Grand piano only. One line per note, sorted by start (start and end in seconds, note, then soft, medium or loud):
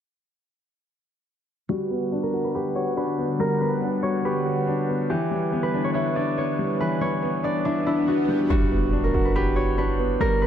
1.69 2.76 G3 medium
1.90 2.97 B3 medium
2.12 2.95 D4 medium
2.33 2.75 F#4 medium
2.55 3.61 G4 loud
2.76 3.82 F#4 medium
2.97 3.80 D4 medium
3.18 3.59 B3 medium
3.39 4.46 G3 loud
3.61 4.67 B3 medium
3.82 4.66 D4 medium
4.04 4.44 F#4 medium
4.25 5.10 G4 loud
4.46 5.10 F#4 medium
4.67 5.10 D4 medium
4.88 5.10 B3 medium
5.10 6.16 E3 loud
5.31 6.38 G3 medium
5.52 6.36 B3 medium
5.74 6.15 D4 medium
5.95 7.01 E4 loud
6.16 7.23 D4 medium
6.38 7.21 B3 medium
6.59 7.00 G3 medium
6.80 7.87 E3 medium
7.01 8.08 G3 medium
7.23 8.06 B3 medium
7.44 7.85 D4 medium
7.65 8.50 E4 medium
7.86 8.50 D4 medium
8.08 8.50 B3 medium
8.29 8.49 G3 medium
8.50 9.57 G3 medium
8.71 9.78 B3 medium
8.93 9.76 D4 medium
9.14 9.55 F#4 medium
9.36 10.42 G4 loud
9.57 10.47 F#4 medium
9.78 10.47 D4 medium
9.99 10.40 B3 medium
10.20 10.47 G3 medium
10.42 10.47 B3 medium